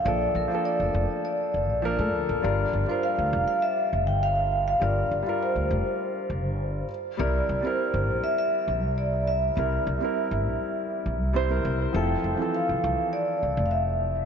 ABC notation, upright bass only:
X:1
M:4/4
L:1/16
Q:1/4=101
K:Cmix
V:1 name="Upright bass" clef=bass
B,,, z B,,, z2 F,,, F,,, z3 F,,, B,,,2 B,, D,, B,,, | G,,, z G,,, z2 D,, F,,, z3 F,,, G,,,4 z | G,,, z G,,, z2 D,, F,,, z3 F,,, G,,,2 z3 | C,, z C,, z2 G,,, B,,, z3 B,,, C,,4 z |
C,, z C,, z2 G,,, B,,, z3 B,,, C,,3 C,, z | F,,, z F,,, z2 C,, C,, z3 C,, F,,,4 z |]